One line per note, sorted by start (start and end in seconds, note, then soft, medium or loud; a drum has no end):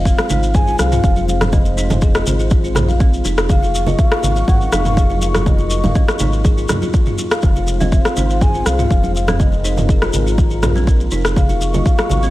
0.00 0.14 F1 loud
0.00 3.46 G#3 medium
0.00 3.46 C4 medium
0.00 3.46 F4 medium
0.00 3.46 C5 medium
0.05 0.17 C4 medium
0.05 0.57 F5 loud
0.05 kick loud
0.05 shekere medium
0.18 cross-stick medium
0.18 muted conga medium
0.18 shekere soft
0.30 0.75 G#1 medium
0.30 0.42 D#4 loud
0.30 low conga medium
0.30 shekere medium
0.43 shekere soft
0.54 0.66 G#4 medium
0.54 0.79 G#5 loud
0.54 kick loud
0.54 mid tom medium
0.54 muted conga soft
0.54 shekere medium
0.67 0.78 F4 medium
0.67 shekere soft
0.79 0.99 C2 loud
0.79 1.25 F5 loud
0.79 cross-stick medium
0.79 muted conga medium
0.79 high conga medium
0.79 shekere medium
0.92 1.03 F4 medium
0.92 mid tom loud
0.92 shekere soft
1.03 2.23 F1 loud
1.03 kick loud
1.03 muted conga soft
1.03 shekere medium
1.16 1.28 F4 medium
1.16 high conga medium
1.16 shekere soft
1.28 1.55 F5 loud
1.28 muted conga medium
1.28 shekere medium
1.41 1.47 F5 medium
1.41 cross-stick medium
1.41 mid tom medium
1.41 high conga loud
1.41 shekere soft
1.53 1.64 C4 medium
1.53 2.52 D#5 medium
1.53 kick loud
1.53 low conga loud
1.53 shekere medium
1.65 muted conga medium
1.65 shekere soft
1.77 1.89 D#4 loud
1.77 shekere medium
1.90 mid tom loud
1.90 muted conga soft
1.90 high conga loud
1.90 low conga loud
1.90 shekere soft
2.01 2.14 G#4 medium
2.01 kick loud
2.01 shekere medium
2.14 2.25 F4 medium
2.14 cross-stick loud
2.14 muted conga soft
2.14 shekere soft
2.26 2.77 G#1 medium
2.26 low conga loud
2.26 shekere medium
2.39 2.51 F4 medium
2.39 shekere soft
2.50 kick loud
2.50 muted conga soft
2.50 high conga medium
2.50 shekere medium
2.64 2.75 F4 medium
2.64 shekere soft
2.75 3.21 A#1 loud
2.75 cross-stick medium
2.75 mid tom loud
2.75 muted conga medium
2.75 high conga medium
2.75 low conga loud
2.75 shekere medium
2.88 2.95 F5 medium
2.88 high conga medium
2.88 shekere soft
3.00 3.12 C4 medium
3.00 kick loud
3.00 muted conga soft
3.00 shekere soft
3.13 shekere soft
3.25 3.95 F1 medium
3.25 3.37 D#4 loud
3.25 muted conga medium
3.25 shekere medium
3.38 cross-stick loud
3.38 shekere soft
3.49 7.39 F#3 medium
3.49 7.39 A#3 medium
3.49 7.39 D#4 medium
3.49 3.61 G#4 medium
3.49 3.89 F5 loud
3.49 7.39 C#6 medium
3.49 kick loud
3.49 low conga loud
3.49 shekere medium
3.62 3.73 F4 medium
3.62 muted conga soft
3.62 shekere soft
3.75 shekere medium
3.86 3.98 F4 medium
3.86 4.01 D#5 medium
3.86 muted conga soft
3.86 high conga loud
3.86 low conga loud
3.86 shekere soft
3.99 4.50 F5 loud
3.99 kick loud
3.99 shekere medium
4.12 4.23 F4 medium
4.12 cross-stick loud
4.12 muted conga soft
4.12 shekere soft
4.23 4.43 G#1 medium
4.23 low conga medium
4.23 shekere loud
4.36 4.43 F5 medium
4.36 shekere soft
4.48 4.68 G#1 medium
4.48 4.60 C4 medium
4.48 4.74 F#5 loud
4.48 kick loud
4.48 mid tom medium
4.48 muted conga soft
4.48 shekere medium
4.61 shekere soft
4.72 5.92 F1 loud
4.72 4.84 D#4 loud
4.72 5.21 F5 loud
4.72 cross-stick medium
4.72 muted conga soft
4.72 high conga loud
4.72 shekere loud
4.85 mid tom loud
4.85 shekere soft
4.97 5.09 G#4 medium
4.97 kick loud
4.97 muted conga soft
4.97 shekere soft
5.10 5.21 F4 medium
5.10 high conga medium
5.10 shekere soft
5.22 5.28 F5 loud
5.22 muted conga soft
5.22 shekere loud
5.34 5.46 F4 medium
5.34 cross-stick loud
5.34 mid tom medium
5.34 high conga loud
5.34 shekere soft
5.46 6.41 D#5 medium
5.46 kick loud
5.46 low conga loud
5.46 shekere soft
5.58 5.70 F4 medium
5.58 muted conga medium
5.58 shekere soft
5.70 shekere medium
5.84 5.90 F5 medium
5.84 mid tom medium
5.84 muted conga soft
5.84 high conga loud
5.84 low conga loud
5.84 shekere soft
5.95 6.07 C4 medium
5.95 kick loud
5.95 shekere medium
6.08 cross-stick medium
6.08 muted conga soft
6.08 shekere soft
6.19 6.66 G#1 medium
6.19 6.32 D#4 loud
6.19 low conga medium
6.19 shekere loud
6.33 shekere soft
6.45 6.56 G#4 medium
6.45 kick loud
6.45 muted conga soft
6.45 high conga medium
6.45 shekere medium
6.57 6.68 F4 medium
6.57 shekere soft
6.69 cross-stick medium
6.69 mid tom medium
6.69 muted conga medium
6.69 high conga loud
6.69 low conga loud
6.69 shekere loud
6.82 6.93 F4 medium
6.82 high conga loud
6.82 shekere soft
6.94 kick loud
6.94 muted conga soft
6.94 shekere medium
7.06 7.18 F4 medium
7.06 mid tom medium
7.06 shekere soft
7.18 muted conga soft
7.18 shekere medium
7.31 7.38 F5 medium
7.31 cross-stick loud
7.31 shekere soft
7.42 8.01 F1 loud
7.42 11.33 G#3 medium
7.42 11.33 C4 medium
7.42 11.33 F4 medium
7.42 9.38 C5 medium
7.42 7.82 F5 loud
7.42 kick loud
7.42 low conga medium
7.42 shekere medium
7.56 7.67 F4 medium
7.56 muted conga medium
7.56 shekere soft
7.67 shekere medium
7.80 7.91 C4 loud
7.80 7.94 D#5 medium
7.80 muted conga soft
7.80 high conga loud
7.80 low conga loud
7.80 shekere soft
7.92 8.04 C4 medium
7.92 8.43 F5 loud
7.92 kick loud
7.92 shekere medium
8.05 cross-stick medium
8.05 muted conga soft
8.05 shekere soft
8.16 8.62 G#1 medium
8.16 8.28 D#4 loud
8.16 low conga medium
8.16 shekere medium
8.30 shekere soft
8.41 8.53 G#4 medium
8.41 8.68 G#5 loud
8.41 kick loud
8.41 mid tom medium
8.41 muted conga soft
8.41 shekere soft
8.54 8.65 F4 medium
8.54 shekere soft
8.66 8.86 C2 loud
8.66 9.15 F5 loud
8.66 cross-stick medium
8.66 muted conga medium
8.66 high conga medium
8.66 shekere medium
8.79 8.90 F4 medium
8.79 mid tom medium
8.79 shekere soft
8.91 10.10 F1 loud
8.91 kick loud
8.91 muted conga soft
8.91 shekere medium
9.03 9.15 F4 medium
9.03 high conga loud
9.03 shekere soft
9.15 9.42 F5 loud
9.15 muted conga soft
9.15 shekere medium
9.28 9.39 C4 loud
9.28 cross-stick medium
9.28 mid tom medium
9.28 high conga loud
9.28 shekere soft
9.40 9.51 C4 medium
9.40 11.35 A#4 medium
9.40 10.38 D#5 medium
9.40 kick loud
9.40 low conga loud
9.40 shekere soft
9.52 muted conga medium
9.52 shekere soft
9.64 9.76 D#4 loud
9.64 shekere medium
9.77 mid tom medium
9.77 muted conga soft
9.77 high conga loud
9.77 low conga loud
9.77 shekere soft
9.89 10.01 G#4 medium
9.89 kick loud
9.89 shekere medium
10.02 10.12 F4 medium
10.02 cross-stick medium
10.02 muted conga medium
10.02 shekere soft
10.13 10.64 G#1 loud
10.13 low conga medium
10.13 shekere medium
10.26 10.38 F4 medium
10.26 shekere soft
10.38 kick loud
10.38 muted conga soft
10.38 high conga medium
10.38 shekere soft
10.50 10.62 F4 medium
10.50 shekere soft
10.62 11.08 A#1 loud
10.62 cross-stick medium
10.62 mid tom medium
10.62 muted conga medium
10.62 high conga medium
10.62 low conga loud
10.62 shekere medium
10.75 10.86 C4 loud
10.75 high conga medium
10.75 shekere soft
10.87 10.99 C4 medium
10.87 kick loud
10.87 muted conga soft
10.87 shekere medium
11.00 shekere soft
11.11 11.82 F1 medium
11.11 11.24 D#4 loud
11.11 muted conga medium
11.11 shekere medium
11.25 cross-stick medium
11.25 shekere soft
11.36 12.30 F#3 medium
11.36 12.30 A#3 medium
11.36 12.30 D#4 medium
11.36 11.48 G#4 medium
11.36 11.76 F5 loud
11.36 12.30 C#6 medium
11.36 kick loud
11.36 low conga loud
11.36 shekere soft
11.49 11.60 F4 medium
11.49 muted conga medium
11.49 shekere soft
11.61 shekere medium
11.74 11.85 F4 medium
11.74 11.88 D#5 medium
11.74 muted conga soft
11.74 high conga loud
11.74 low conga loud
11.74 shekere soft
11.86 12.30 F5 loud
11.86 kick loud
11.86 shekere soft
11.98 12.10 F4 medium
11.98 cross-stick medium
11.98 muted conga soft
11.98 shekere soft
12.09 12.30 G#1 medium
12.09 low conga medium
12.09 shekere medium
12.23 12.30 C4 loud
12.23 shekere soft